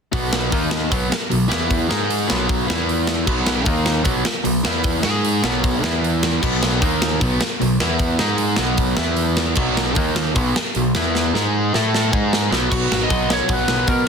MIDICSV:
0, 0, Header, 1, 6, 480
1, 0, Start_track
1, 0, Key_signature, 5, "major"
1, 0, Tempo, 392670
1, 165, Time_signature, 4, 2, 24, 8
1, 17211, End_track
2, 0, Start_track
2, 0, Title_t, "Lead electric guitar"
2, 0, Program_c, 0, 29
2, 15553, Note_on_c, 0, 66, 93
2, 15912, Note_off_c, 0, 66, 0
2, 15935, Note_on_c, 0, 75, 100
2, 16282, Note_off_c, 0, 75, 0
2, 16294, Note_on_c, 0, 73, 105
2, 16536, Note_off_c, 0, 73, 0
2, 16536, Note_on_c, 0, 71, 91
2, 16976, Note_off_c, 0, 71, 0
2, 16981, Note_on_c, 0, 70, 87
2, 17211, Note_off_c, 0, 70, 0
2, 17211, End_track
3, 0, Start_track
3, 0, Title_t, "Distorted electric guitar"
3, 0, Program_c, 1, 30
3, 145, Note_on_c, 1, 47, 85
3, 155, Note_on_c, 1, 54, 95
3, 162, Note_on_c, 1, 59, 95
3, 624, Note_off_c, 1, 47, 0
3, 627, Note_off_c, 1, 54, 0
3, 628, Note_on_c, 1, 51, 83
3, 632, Note_on_c, 1, 58, 86
3, 636, Note_off_c, 1, 59, 0
3, 644, Note_on_c, 1, 63, 107
3, 1103, Note_off_c, 1, 58, 0
3, 1106, Note_off_c, 1, 51, 0
3, 1108, Note_on_c, 1, 54, 96
3, 1110, Note_on_c, 1, 47, 79
3, 1113, Note_off_c, 1, 63, 0
3, 1117, Note_on_c, 1, 59, 89
3, 1326, Note_off_c, 1, 47, 0
3, 1349, Note_off_c, 1, 54, 0
3, 1354, Note_off_c, 1, 59, 0
3, 1589, Note_on_c, 1, 47, 70
3, 1589, Note_on_c, 1, 54, 77
3, 1789, Note_off_c, 1, 47, 0
3, 1789, Note_off_c, 1, 54, 0
3, 1811, Note_on_c, 1, 52, 89
3, 1824, Note_on_c, 1, 59, 84
3, 1824, Note_on_c, 1, 64, 104
3, 2297, Note_off_c, 1, 59, 0
3, 2300, Note_off_c, 1, 52, 0
3, 2302, Note_on_c, 1, 56, 83
3, 2307, Note_off_c, 1, 64, 0
3, 2315, Note_on_c, 1, 63, 106
3, 2317, Note_on_c, 1, 68, 108
3, 2784, Note_off_c, 1, 56, 0
3, 2787, Note_on_c, 1, 47, 84
3, 2788, Note_off_c, 1, 63, 0
3, 2789, Note_on_c, 1, 54, 107
3, 2793, Note_off_c, 1, 68, 0
3, 2793, Note_on_c, 1, 59, 98
3, 3258, Note_off_c, 1, 59, 0
3, 3268, Note_off_c, 1, 47, 0
3, 3268, Note_off_c, 1, 54, 0
3, 3273, Note_on_c, 1, 52, 80
3, 3273, Note_on_c, 1, 59, 93
3, 3277, Note_on_c, 1, 64, 96
3, 3986, Note_off_c, 1, 59, 0
3, 3987, Note_off_c, 1, 52, 0
3, 3992, Note_on_c, 1, 47, 95
3, 3993, Note_off_c, 1, 64, 0
3, 3993, Note_on_c, 1, 54, 101
3, 4000, Note_on_c, 1, 59, 97
3, 4460, Note_off_c, 1, 47, 0
3, 4460, Note_on_c, 1, 51, 83
3, 4472, Note_off_c, 1, 54, 0
3, 4472, Note_on_c, 1, 58, 93
3, 4475, Note_off_c, 1, 59, 0
3, 4475, Note_on_c, 1, 63, 90
3, 4929, Note_off_c, 1, 51, 0
3, 4930, Note_off_c, 1, 58, 0
3, 4934, Note_on_c, 1, 47, 89
3, 4934, Note_on_c, 1, 54, 100
3, 4935, Note_off_c, 1, 63, 0
3, 4940, Note_on_c, 1, 59, 89
3, 5176, Note_off_c, 1, 47, 0
3, 5183, Note_off_c, 1, 54, 0
3, 5186, Note_off_c, 1, 59, 0
3, 5425, Note_on_c, 1, 47, 77
3, 5430, Note_on_c, 1, 54, 80
3, 5627, Note_off_c, 1, 47, 0
3, 5630, Note_off_c, 1, 54, 0
3, 5666, Note_on_c, 1, 52, 89
3, 5673, Note_on_c, 1, 59, 92
3, 5679, Note_on_c, 1, 64, 100
3, 6142, Note_off_c, 1, 59, 0
3, 6142, Note_on_c, 1, 56, 88
3, 6148, Note_off_c, 1, 64, 0
3, 6148, Note_on_c, 1, 63, 97
3, 6149, Note_off_c, 1, 52, 0
3, 6158, Note_on_c, 1, 68, 96
3, 6628, Note_off_c, 1, 56, 0
3, 6631, Note_off_c, 1, 63, 0
3, 6636, Note_off_c, 1, 68, 0
3, 6639, Note_on_c, 1, 47, 84
3, 6648, Note_on_c, 1, 54, 102
3, 6651, Note_on_c, 1, 59, 100
3, 7128, Note_off_c, 1, 47, 0
3, 7128, Note_on_c, 1, 52, 80
3, 7137, Note_off_c, 1, 54, 0
3, 7137, Note_off_c, 1, 59, 0
3, 7137, Note_on_c, 1, 59, 87
3, 7142, Note_on_c, 1, 64, 92
3, 7828, Note_off_c, 1, 52, 0
3, 7833, Note_off_c, 1, 59, 0
3, 7833, Note_on_c, 1, 47, 91
3, 7843, Note_off_c, 1, 64, 0
3, 7846, Note_on_c, 1, 54, 92
3, 7848, Note_on_c, 1, 59, 93
3, 8315, Note_off_c, 1, 47, 0
3, 8320, Note_off_c, 1, 54, 0
3, 8322, Note_off_c, 1, 59, 0
3, 8323, Note_on_c, 1, 51, 79
3, 8325, Note_on_c, 1, 58, 95
3, 8336, Note_on_c, 1, 63, 94
3, 8801, Note_off_c, 1, 51, 0
3, 8801, Note_off_c, 1, 58, 0
3, 8807, Note_off_c, 1, 63, 0
3, 8810, Note_on_c, 1, 47, 83
3, 8811, Note_on_c, 1, 54, 87
3, 8825, Note_on_c, 1, 59, 90
3, 9039, Note_off_c, 1, 47, 0
3, 9045, Note_off_c, 1, 54, 0
3, 9052, Note_off_c, 1, 59, 0
3, 9288, Note_on_c, 1, 47, 66
3, 9299, Note_on_c, 1, 54, 74
3, 9483, Note_off_c, 1, 47, 0
3, 9488, Note_off_c, 1, 54, 0
3, 9538, Note_on_c, 1, 52, 87
3, 9543, Note_on_c, 1, 59, 87
3, 9548, Note_on_c, 1, 64, 87
3, 10006, Note_off_c, 1, 59, 0
3, 10009, Note_off_c, 1, 52, 0
3, 10011, Note_off_c, 1, 64, 0
3, 10011, Note_on_c, 1, 56, 87
3, 10016, Note_on_c, 1, 63, 95
3, 10019, Note_on_c, 1, 68, 93
3, 10486, Note_off_c, 1, 56, 0
3, 10488, Note_off_c, 1, 63, 0
3, 10489, Note_on_c, 1, 47, 95
3, 10490, Note_off_c, 1, 68, 0
3, 10491, Note_on_c, 1, 54, 101
3, 10503, Note_on_c, 1, 59, 113
3, 10953, Note_off_c, 1, 59, 0
3, 10963, Note_off_c, 1, 54, 0
3, 10965, Note_off_c, 1, 47, 0
3, 10968, Note_on_c, 1, 59, 103
3, 10969, Note_on_c, 1, 52, 90
3, 10973, Note_on_c, 1, 64, 90
3, 11675, Note_off_c, 1, 59, 0
3, 11681, Note_off_c, 1, 52, 0
3, 11685, Note_off_c, 1, 64, 0
3, 11686, Note_on_c, 1, 47, 92
3, 11686, Note_on_c, 1, 54, 92
3, 11690, Note_on_c, 1, 59, 109
3, 12163, Note_off_c, 1, 47, 0
3, 12163, Note_on_c, 1, 51, 93
3, 12173, Note_off_c, 1, 54, 0
3, 12173, Note_on_c, 1, 58, 84
3, 12176, Note_off_c, 1, 59, 0
3, 12176, Note_on_c, 1, 63, 97
3, 12639, Note_off_c, 1, 51, 0
3, 12644, Note_on_c, 1, 47, 83
3, 12646, Note_off_c, 1, 58, 0
3, 12648, Note_off_c, 1, 63, 0
3, 12653, Note_on_c, 1, 54, 95
3, 12655, Note_on_c, 1, 59, 94
3, 12882, Note_off_c, 1, 47, 0
3, 12886, Note_off_c, 1, 54, 0
3, 12887, Note_off_c, 1, 59, 0
3, 13161, Note_on_c, 1, 47, 69
3, 13161, Note_on_c, 1, 54, 83
3, 13340, Note_off_c, 1, 47, 0
3, 13340, Note_off_c, 1, 54, 0
3, 13385, Note_on_c, 1, 52, 91
3, 13393, Note_on_c, 1, 59, 105
3, 13397, Note_on_c, 1, 64, 87
3, 13851, Note_off_c, 1, 52, 0
3, 13856, Note_off_c, 1, 59, 0
3, 13858, Note_off_c, 1, 64, 0
3, 13867, Note_on_c, 1, 56, 94
3, 13871, Note_on_c, 1, 63, 85
3, 13875, Note_on_c, 1, 68, 101
3, 14332, Note_off_c, 1, 56, 0
3, 14334, Note_off_c, 1, 63, 0
3, 14336, Note_off_c, 1, 68, 0
3, 14345, Note_on_c, 1, 57, 94
3, 14360, Note_on_c, 1, 64, 103
3, 14362, Note_on_c, 1, 69, 98
3, 14810, Note_off_c, 1, 64, 0
3, 14811, Note_off_c, 1, 57, 0
3, 14815, Note_on_c, 1, 63, 100
3, 14816, Note_on_c, 1, 56, 90
3, 14819, Note_off_c, 1, 69, 0
3, 14825, Note_on_c, 1, 68, 99
3, 15285, Note_on_c, 1, 47, 83
3, 15286, Note_off_c, 1, 56, 0
3, 15286, Note_off_c, 1, 63, 0
3, 15291, Note_off_c, 1, 68, 0
3, 15291, Note_on_c, 1, 54, 104
3, 15291, Note_on_c, 1, 59, 82
3, 15504, Note_off_c, 1, 47, 0
3, 15510, Note_off_c, 1, 54, 0
3, 15513, Note_off_c, 1, 59, 0
3, 15518, Note_on_c, 1, 47, 86
3, 15525, Note_on_c, 1, 54, 90
3, 15528, Note_on_c, 1, 59, 100
3, 16001, Note_off_c, 1, 47, 0
3, 16002, Note_off_c, 1, 54, 0
3, 16006, Note_on_c, 1, 47, 77
3, 16007, Note_on_c, 1, 54, 86
3, 16009, Note_off_c, 1, 59, 0
3, 16014, Note_on_c, 1, 59, 91
3, 16239, Note_off_c, 1, 47, 0
3, 16251, Note_off_c, 1, 59, 0
3, 16254, Note_off_c, 1, 54, 0
3, 16254, Note_on_c, 1, 47, 91
3, 16259, Note_on_c, 1, 54, 92
3, 16265, Note_on_c, 1, 59, 88
3, 16474, Note_off_c, 1, 47, 0
3, 16482, Note_off_c, 1, 54, 0
3, 16482, Note_off_c, 1, 59, 0
3, 16487, Note_on_c, 1, 54, 88
3, 16489, Note_on_c, 1, 47, 96
3, 16496, Note_on_c, 1, 59, 93
3, 16947, Note_off_c, 1, 47, 0
3, 16952, Note_off_c, 1, 59, 0
3, 16961, Note_on_c, 1, 47, 90
3, 16962, Note_off_c, 1, 54, 0
3, 16967, Note_on_c, 1, 54, 79
3, 16967, Note_on_c, 1, 59, 99
3, 17166, Note_off_c, 1, 47, 0
3, 17185, Note_off_c, 1, 59, 0
3, 17187, Note_off_c, 1, 54, 0
3, 17211, End_track
4, 0, Start_track
4, 0, Title_t, "Picked electric bass"
4, 0, Program_c, 2, 34
4, 160, Note_on_c, 2, 35, 90
4, 609, Note_off_c, 2, 35, 0
4, 644, Note_on_c, 2, 39, 104
4, 1091, Note_off_c, 2, 39, 0
4, 1122, Note_on_c, 2, 35, 91
4, 1346, Note_off_c, 2, 35, 0
4, 1618, Note_on_c, 2, 35, 80
4, 1835, Note_off_c, 2, 35, 0
4, 1855, Note_on_c, 2, 40, 88
4, 2296, Note_off_c, 2, 40, 0
4, 2337, Note_on_c, 2, 44, 96
4, 2777, Note_off_c, 2, 44, 0
4, 2822, Note_on_c, 2, 35, 89
4, 3260, Note_off_c, 2, 35, 0
4, 3303, Note_on_c, 2, 40, 91
4, 3964, Note_off_c, 2, 40, 0
4, 3998, Note_on_c, 2, 35, 93
4, 4447, Note_off_c, 2, 35, 0
4, 4481, Note_on_c, 2, 39, 104
4, 4929, Note_off_c, 2, 39, 0
4, 4959, Note_on_c, 2, 35, 88
4, 5185, Note_off_c, 2, 35, 0
4, 5447, Note_on_c, 2, 35, 85
4, 5669, Note_off_c, 2, 35, 0
4, 5691, Note_on_c, 2, 40, 87
4, 6136, Note_off_c, 2, 40, 0
4, 6172, Note_on_c, 2, 44, 92
4, 6616, Note_off_c, 2, 44, 0
4, 6645, Note_on_c, 2, 35, 90
4, 7093, Note_off_c, 2, 35, 0
4, 7131, Note_on_c, 2, 40, 83
4, 7802, Note_off_c, 2, 40, 0
4, 7862, Note_on_c, 2, 35, 90
4, 8303, Note_off_c, 2, 35, 0
4, 8336, Note_on_c, 2, 39, 100
4, 8781, Note_off_c, 2, 39, 0
4, 8818, Note_on_c, 2, 35, 99
4, 9039, Note_off_c, 2, 35, 0
4, 9310, Note_on_c, 2, 35, 83
4, 9526, Note_off_c, 2, 35, 0
4, 9548, Note_on_c, 2, 40, 88
4, 9988, Note_off_c, 2, 40, 0
4, 10026, Note_on_c, 2, 44, 87
4, 10467, Note_off_c, 2, 44, 0
4, 10495, Note_on_c, 2, 35, 86
4, 10941, Note_off_c, 2, 35, 0
4, 10980, Note_on_c, 2, 40, 88
4, 11649, Note_off_c, 2, 40, 0
4, 11701, Note_on_c, 2, 35, 94
4, 12144, Note_off_c, 2, 35, 0
4, 12184, Note_on_c, 2, 39, 106
4, 12626, Note_off_c, 2, 39, 0
4, 12663, Note_on_c, 2, 35, 99
4, 12882, Note_off_c, 2, 35, 0
4, 13151, Note_on_c, 2, 35, 82
4, 13366, Note_off_c, 2, 35, 0
4, 13384, Note_on_c, 2, 40, 89
4, 13825, Note_off_c, 2, 40, 0
4, 13872, Note_on_c, 2, 44, 102
4, 14309, Note_off_c, 2, 44, 0
4, 14351, Note_on_c, 2, 45, 85
4, 14788, Note_off_c, 2, 45, 0
4, 14834, Note_on_c, 2, 44, 74
4, 15269, Note_off_c, 2, 44, 0
4, 15302, Note_on_c, 2, 35, 85
4, 15520, Note_off_c, 2, 35, 0
4, 15544, Note_on_c, 2, 35, 89
4, 15720, Note_off_c, 2, 35, 0
4, 15787, Note_on_c, 2, 32, 82
4, 15961, Note_off_c, 2, 32, 0
4, 16020, Note_on_c, 2, 35, 88
4, 16377, Note_off_c, 2, 35, 0
4, 16491, Note_on_c, 2, 35, 82
4, 16671, Note_off_c, 2, 35, 0
4, 16730, Note_on_c, 2, 35, 76
4, 16910, Note_off_c, 2, 35, 0
4, 16962, Note_on_c, 2, 47, 89
4, 17146, Note_off_c, 2, 47, 0
4, 17211, End_track
5, 0, Start_track
5, 0, Title_t, "Muted distorted electric guitar strokes"
5, 1341, Note_on_c, 9, 29, 57
5, 1463, Note_off_c, 9, 29, 0
5, 5190, Note_on_c, 9, 29, 60
5, 5313, Note_off_c, 9, 29, 0
5, 9054, Note_on_c, 9, 29, 60
5, 9176, Note_off_c, 9, 29, 0
5, 12912, Note_on_c, 9, 29, 55
5, 13034, Note_off_c, 9, 29, 0
5, 17211, End_track
6, 0, Start_track
6, 0, Title_t, "Drums"
6, 158, Note_on_c, 9, 36, 102
6, 167, Note_on_c, 9, 46, 57
6, 281, Note_off_c, 9, 36, 0
6, 289, Note_off_c, 9, 46, 0
6, 400, Note_on_c, 9, 38, 104
6, 522, Note_off_c, 9, 38, 0
6, 639, Note_on_c, 9, 36, 108
6, 641, Note_on_c, 9, 46, 66
6, 762, Note_off_c, 9, 36, 0
6, 763, Note_off_c, 9, 46, 0
6, 870, Note_on_c, 9, 38, 117
6, 992, Note_off_c, 9, 38, 0
6, 1121, Note_on_c, 9, 36, 97
6, 1128, Note_on_c, 9, 46, 68
6, 1243, Note_off_c, 9, 36, 0
6, 1250, Note_off_c, 9, 46, 0
6, 1371, Note_on_c, 9, 38, 114
6, 1493, Note_off_c, 9, 38, 0
6, 1607, Note_on_c, 9, 46, 61
6, 1729, Note_off_c, 9, 46, 0
6, 1853, Note_on_c, 9, 38, 115
6, 1975, Note_off_c, 9, 38, 0
6, 2085, Note_on_c, 9, 36, 88
6, 2089, Note_on_c, 9, 46, 57
6, 2208, Note_off_c, 9, 36, 0
6, 2211, Note_off_c, 9, 46, 0
6, 2331, Note_on_c, 9, 38, 96
6, 2453, Note_off_c, 9, 38, 0
6, 2573, Note_on_c, 9, 46, 64
6, 2695, Note_off_c, 9, 46, 0
6, 2809, Note_on_c, 9, 38, 117
6, 2931, Note_off_c, 9, 38, 0
6, 3048, Note_on_c, 9, 36, 103
6, 3049, Note_on_c, 9, 46, 54
6, 3170, Note_off_c, 9, 36, 0
6, 3171, Note_off_c, 9, 46, 0
6, 3300, Note_on_c, 9, 38, 112
6, 3422, Note_off_c, 9, 38, 0
6, 3535, Note_on_c, 9, 46, 54
6, 3657, Note_off_c, 9, 46, 0
6, 3758, Note_on_c, 9, 38, 96
6, 3880, Note_off_c, 9, 38, 0
6, 4000, Note_on_c, 9, 49, 84
6, 4001, Note_on_c, 9, 36, 101
6, 4122, Note_off_c, 9, 49, 0
6, 4123, Note_off_c, 9, 36, 0
6, 4236, Note_on_c, 9, 38, 98
6, 4358, Note_off_c, 9, 38, 0
6, 4467, Note_on_c, 9, 46, 59
6, 4477, Note_on_c, 9, 36, 111
6, 4590, Note_off_c, 9, 46, 0
6, 4599, Note_off_c, 9, 36, 0
6, 4717, Note_on_c, 9, 38, 104
6, 4839, Note_off_c, 9, 38, 0
6, 4947, Note_on_c, 9, 46, 53
6, 4956, Note_on_c, 9, 36, 105
6, 5069, Note_off_c, 9, 46, 0
6, 5078, Note_off_c, 9, 36, 0
6, 5195, Note_on_c, 9, 38, 115
6, 5317, Note_off_c, 9, 38, 0
6, 5438, Note_on_c, 9, 46, 68
6, 5560, Note_off_c, 9, 46, 0
6, 5681, Note_on_c, 9, 38, 116
6, 5803, Note_off_c, 9, 38, 0
6, 5913, Note_on_c, 9, 46, 59
6, 5920, Note_on_c, 9, 36, 107
6, 6035, Note_off_c, 9, 46, 0
6, 6042, Note_off_c, 9, 36, 0
6, 6151, Note_on_c, 9, 38, 104
6, 6273, Note_off_c, 9, 38, 0
6, 6412, Note_on_c, 9, 46, 58
6, 6535, Note_off_c, 9, 46, 0
6, 6646, Note_on_c, 9, 38, 121
6, 6768, Note_off_c, 9, 38, 0
6, 6894, Note_on_c, 9, 36, 104
6, 6902, Note_on_c, 9, 46, 56
6, 7016, Note_off_c, 9, 36, 0
6, 7024, Note_off_c, 9, 46, 0
6, 7136, Note_on_c, 9, 38, 105
6, 7258, Note_off_c, 9, 38, 0
6, 7388, Note_on_c, 9, 46, 57
6, 7510, Note_off_c, 9, 46, 0
6, 7616, Note_on_c, 9, 38, 114
6, 7738, Note_off_c, 9, 38, 0
6, 7857, Note_on_c, 9, 36, 99
6, 7866, Note_on_c, 9, 57, 91
6, 7980, Note_off_c, 9, 36, 0
6, 7988, Note_off_c, 9, 57, 0
6, 8100, Note_on_c, 9, 38, 100
6, 8222, Note_off_c, 9, 38, 0
6, 8336, Note_on_c, 9, 36, 110
6, 8346, Note_on_c, 9, 46, 63
6, 8458, Note_off_c, 9, 36, 0
6, 8469, Note_off_c, 9, 46, 0
6, 8580, Note_on_c, 9, 38, 118
6, 8703, Note_off_c, 9, 38, 0
6, 8816, Note_on_c, 9, 36, 109
6, 8826, Note_on_c, 9, 46, 62
6, 8938, Note_off_c, 9, 36, 0
6, 8948, Note_off_c, 9, 46, 0
6, 9053, Note_on_c, 9, 38, 118
6, 9176, Note_off_c, 9, 38, 0
6, 9309, Note_on_c, 9, 46, 58
6, 9431, Note_off_c, 9, 46, 0
6, 9539, Note_on_c, 9, 38, 94
6, 9661, Note_off_c, 9, 38, 0
6, 9769, Note_on_c, 9, 46, 59
6, 9773, Note_on_c, 9, 36, 100
6, 9891, Note_off_c, 9, 46, 0
6, 9895, Note_off_c, 9, 36, 0
6, 10011, Note_on_c, 9, 38, 105
6, 10134, Note_off_c, 9, 38, 0
6, 10243, Note_on_c, 9, 46, 62
6, 10365, Note_off_c, 9, 46, 0
6, 10469, Note_on_c, 9, 38, 104
6, 10591, Note_off_c, 9, 38, 0
6, 10727, Note_on_c, 9, 46, 65
6, 10732, Note_on_c, 9, 36, 100
6, 10850, Note_off_c, 9, 46, 0
6, 10854, Note_off_c, 9, 36, 0
6, 10960, Note_on_c, 9, 38, 117
6, 11083, Note_off_c, 9, 38, 0
6, 11204, Note_on_c, 9, 46, 55
6, 11326, Note_off_c, 9, 46, 0
6, 11451, Note_on_c, 9, 38, 115
6, 11573, Note_off_c, 9, 38, 0
6, 11679, Note_on_c, 9, 49, 85
6, 11696, Note_on_c, 9, 36, 113
6, 11801, Note_off_c, 9, 49, 0
6, 11818, Note_off_c, 9, 36, 0
6, 11946, Note_on_c, 9, 38, 102
6, 12068, Note_off_c, 9, 38, 0
6, 12164, Note_on_c, 9, 46, 57
6, 12180, Note_on_c, 9, 36, 115
6, 12287, Note_off_c, 9, 46, 0
6, 12302, Note_off_c, 9, 36, 0
6, 12418, Note_on_c, 9, 38, 118
6, 12541, Note_off_c, 9, 38, 0
6, 12659, Note_on_c, 9, 46, 62
6, 12662, Note_on_c, 9, 36, 106
6, 12781, Note_off_c, 9, 46, 0
6, 12784, Note_off_c, 9, 36, 0
6, 12909, Note_on_c, 9, 38, 119
6, 13031, Note_off_c, 9, 38, 0
6, 13138, Note_on_c, 9, 46, 60
6, 13260, Note_off_c, 9, 46, 0
6, 13382, Note_on_c, 9, 38, 109
6, 13504, Note_off_c, 9, 38, 0
6, 13631, Note_on_c, 9, 38, 66
6, 13754, Note_off_c, 9, 38, 0
6, 13878, Note_on_c, 9, 38, 57
6, 14001, Note_off_c, 9, 38, 0
6, 14355, Note_on_c, 9, 38, 67
6, 14477, Note_off_c, 9, 38, 0
6, 14602, Note_on_c, 9, 38, 85
6, 14724, Note_off_c, 9, 38, 0
6, 14830, Note_on_c, 9, 36, 111
6, 14952, Note_off_c, 9, 36, 0
6, 15073, Note_on_c, 9, 38, 103
6, 15195, Note_off_c, 9, 38, 0
6, 15311, Note_on_c, 9, 38, 83
6, 15433, Note_off_c, 9, 38, 0
6, 15544, Note_on_c, 9, 36, 112
6, 15553, Note_on_c, 9, 49, 107
6, 15666, Note_off_c, 9, 36, 0
6, 15675, Note_off_c, 9, 49, 0
6, 15792, Note_on_c, 9, 38, 90
6, 15914, Note_off_c, 9, 38, 0
6, 16018, Note_on_c, 9, 36, 105
6, 16024, Note_on_c, 9, 46, 48
6, 16140, Note_off_c, 9, 36, 0
6, 16146, Note_off_c, 9, 46, 0
6, 16261, Note_on_c, 9, 38, 115
6, 16383, Note_off_c, 9, 38, 0
6, 16487, Note_on_c, 9, 46, 51
6, 16490, Note_on_c, 9, 36, 106
6, 16609, Note_off_c, 9, 46, 0
6, 16612, Note_off_c, 9, 36, 0
6, 16724, Note_on_c, 9, 38, 104
6, 16846, Note_off_c, 9, 38, 0
6, 16959, Note_on_c, 9, 46, 50
6, 16965, Note_on_c, 9, 36, 108
6, 17081, Note_off_c, 9, 46, 0
6, 17087, Note_off_c, 9, 36, 0
6, 17211, End_track
0, 0, End_of_file